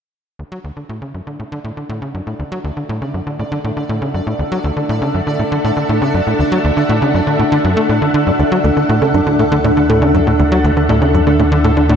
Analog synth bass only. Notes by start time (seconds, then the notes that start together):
0.39 D2
0.52 F#3
0.64 D2
0.77 D3
0.89 A2
1.02 C#3
1.14 F#2
1.27 D3
1.40 A2
1.52 D3
1.64 A2
1.77 D3
1.89 A2
2.02 C#3
2.15 F#2
2.27 A2
2.39 D2
2.52 F#3
2.64 D2
2.77 D3
2.89 A2
3.02 C#3
3.14 F#2
3.27 D3
3.39 A2
3.52 D3
3.64 A2
3.77 D3
3.89 A2
4.02 C#3
4.14 F#2
4.27 A2
4.39 D2
4.52 F#3
4.64 D2
4.77 D3
4.89 A2
5.02 C#3
5.14 F#2
5.27 D3
5.39 A2
5.52 D3
5.64 A2
5.77 D3
5.89 A2
6.02 C#3
6.14 F#2
6.27 A2
6.39 D2
6.52 F#3
6.65 D2
6.77 D3
6.89 A2
7.02 C#3
7.14 F#2
7.27 D3
7.39 A2
7.52 D3
7.65 F#2
7.77 A3
7.89 A2
8.02 D3
8.14 D3
8.27 F#2
8.39 D2
8.52 F#3
8.64 D2
8.77 D3
8.89 A2
9.02 C#3
9.14 F#2
9.27 D3
9.39 A2
9.52 D3
9.64 A2
9.77 D3
9.90 A2
10.02 C#3
10.14 F#2
10.27 A2
10.39 D2
10.52 F#3
10.64 D2
10.77 D3
10.89 A2
11.02 C#3
11.14 F#2
11.27 D3
11.39 A2
11.52 D3
11.64 A2
11.77 D3
11.89 A2